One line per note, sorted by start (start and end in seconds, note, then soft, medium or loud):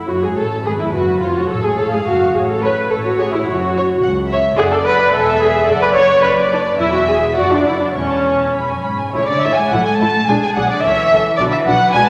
0.07 0.21 F#1 medium
0.07 0.22 F#2 medium
0.07 0.22 F#4 medium
0.07 0.14 F#4 soft
0.07 0.61 C#5 medium
0.22 0.37 G#2 medium
0.22 0.28 G#4 medium
0.22 0.37 G#4 medium
0.37 0.65 A1 medium
0.37 0.66 A2 medium
0.37 0.45 A4 medium
0.37 0.65 A4 medium
0.65 0.79 G#1 medium
0.65 0.81 G#2 medium
0.65 0.71 G#4 medium
0.65 1.21 B4 medium
0.79 0.95 E2 medium
0.79 0.85 E4 medium
0.79 0.94 E4 medium
0.93 1.22 F#1 medium
0.93 1.22 F#2 medium
0.93 1.21 F#4 medium
1.21 1.36 F1 medium
1.21 1.36 F2 medium
1.21 1.36 F4 medium
1.21 1.78 C#5 medium
1.35 1.51 F#2 medium
1.35 1.49 F#4 medium
1.35 1.51 F#4 medium
1.49 1.64 A1 medium
1.49 1.65 A2 medium
1.49 1.64 A4 medium
1.49 1.65 A4 medium
1.62 1.79 G#2 medium
1.62 1.78 G#4 medium
1.62 1.79 G#4 medium
1.77 1.93 A1 medium
1.77 1.93 A2 medium
1.77 1.92 A4 medium
1.77 1.84 A4 medium
1.77 2.37 F5 medium
1.92 2.07 G#2 medium
1.92 2.07 G#4 medium
1.92 1.99 G#4 medium
2.06 2.36 F#1 medium
2.06 2.36 F#2 medium
2.06 2.35 F#4 medium
2.06 2.36 F#4 medium
2.35 2.83 A1 medium
2.35 2.83 A2 medium
2.35 2.50 G#4 medium
2.35 2.89 C#5 medium
2.50 2.64 A4 medium
2.62 2.91 B4 medium
2.62 2.78 C#5 medium
2.90 3.39 A1 medium
2.90 3.39 A2 medium
2.90 2.96 A4 medium
2.90 4.00 C#5 medium
3.06 3.20 F#4 medium
3.19 3.33 G#4 medium
3.19 3.33 C#5 medium
3.32 3.47 E4 medium
3.47 3.94 F#1 medium
3.47 3.94 F#2 medium
3.47 4.03 F#4 medium
3.77 3.89 C#5 medium
4.02 4.49 C#2 medium
4.02 4.10 F#5 medium
4.29 4.44 C#5 medium
4.29 4.57 E5 medium
4.58 5.09 F#1 medium
4.58 5.09 F#2 medium
4.58 4.63 G#4 loud
4.58 5.12 D5 medium
4.58 4.71 F#5 medium
4.71 4.77 A4 medium
4.71 4.86 D5 medium
4.84 5.11 B4 loud
4.84 5.00 F#5 medium
5.00 5.13 D5 medium
5.11 5.67 E1 medium
5.11 5.67 E2 medium
5.11 5.39 A4 loud
5.11 5.68 E5 medium
5.11 5.27 G#5 medium
5.28 5.41 E5 medium
5.39 5.67 G#4 loud
5.39 5.55 G#5 medium
5.55 5.68 E5 medium
5.66 6.80 F#1 medium
5.66 6.80 F#2 medium
5.66 5.81 A4 loud
5.66 6.23 D5 medium
5.66 5.82 F#5 medium
5.81 5.87 B4 loud
5.81 5.97 D5 medium
5.93 6.22 C#5 loud
5.93 6.10 F#5 medium
6.09 6.24 D5 medium
6.22 6.30 B4 loud
6.22 6.37 B4 medium
6.22 6.79 D5 medium
6.36 6.51 D5 medium
6.51 6.60 D4 medium
6.51 6.66 B4 medium
6.65 6.80 D5 medium
6.78 7.36 E1 medium
6.78 7.36 E2 medium
6.78 6.94 E4 loud
6.78 7.35 E5 medium
6.78 6.92 G#5 medium
6.93 7.08 F#4 medium
6.93 7.08 E5 medium
7.07 7.17 G#4 medium
7.07 7.22 G#5 medium
7.20 7.35 E5 medium
7.33 7.95 F#1 medium
7.33 7.51 F#4 medium
7.33 7.95 D5 medium
7.33 7.48 F#5 medium
7.38 7.96 F#2 medium
7.50 7.66 D4 medium
7.50 7.65 D5 medium
7.64 7.81 E4 medium
7.64 7.80 F#5 medium
7.78 7.86 D4 medium
7.78 7.94 D5 soft
7.93 8.94 E1 medium
7.93 8.49 E2 medium
7.93 8.83 C#4 medium
7.93 8.82 C#5 medium
7.93 8.08 C#6 soft
8.09 8.24 A5 soft
8.24 8.39 C#6 soft
8.39 8.55 A5 soft
8.54 8.69 E2 medium
8.54 8.68 B5 medium
8.69 8.85 F#2 medium
8.69 8.84 G#5 soft
8.84 9.14 G#2 medium
8.84 8.99 B5 soft
8.98 9.14 G#5 medium
9.12 9.21 A1 medium
9.12 9.28 C#3 medium
9.12 9.22 A3 medium
9.12 9.22 E4 medium
9.12 9.27 C#5 medium
9.12 9.68 C#5 medium
9.27 9.44 D3 medium
9.27 9.42 D5 medium
9.41 9.51 A1 medium
9.41 9.58 E3 medium
9.41 9.52 A3 medium
9.41 9.52 E4 medium
9.41 9.57 E5 medium
9.56 9.63 G#3 medium
9.56 9.71 G#5 medium
9.70 9.79 A1 medium
9.70 9.77 F#3 medium
9.70 9.80 A3 medium
9.70 9.80 E4 medium
9.70 10.28 A4 medium
9.70 9.85 F#5 medium
9.84 10.00 G#3 medium
9.84 9.99 G#5 medium
9.97 10.08 A1 medium
9.97 10.28 A3 medium
9.97 10.08 A3 medium
9.97 10.08 E4 medium
9.97 10.26 A5 loud
10.26 10.35 B1 medium
10.26 10.33 G#3 medium
10.26 10.37 D4 medium
10.26 10.36 G#4 medium
10.26 10.41 G#5 medium
10.31 10.85 G#4 medium
10.42 10.56 G#3 medium
10.42 10.48 G#5 medium
10.55 10.63 B1 medium
10.55 10.70 F#3 medium
10.55 10.64 D4 medium
10.55 10.64 G#4 medium
10.55 10.70 F#5 medium
10.69 10.84 D3 medium
10.69 10.84 D5 medium
10.84 10.92 C#2 medium
10.84 11.39 E3 medium
10.84 10.94 C#4 medium
10.84 10.93 A4 medium
10.84 11.12 C#5 medium
10.84 11.39 E5 loud
11.11 11.19 C#2 medium
11.11 11.21 C#4 medium
11.11 11.21 A4 medium
11.37 11.47 B1 medium
11.37 11.53 D3 medium
11.37 11.49 D4 medium
11.37 11.48 F#4 medium
11.37 11.43 D5 medium
11.41 12.09 B4 medium
11.51 11.67 E3 medium
11.51 11.57 E5 medium
11.66 11.74 B1 medium
11.66 11.94 F#3 medium
11.66 11.76 D4 medium
11.66 11.75 F#4 medium
11.66 11.93 F#5 loud
11.93 12.02 B1 medium
11.93 12.08 G#3 loud
11.93 12.03 D4 medium
11.93 12.02 F#4 medium
11.93 12.07 G#5 loud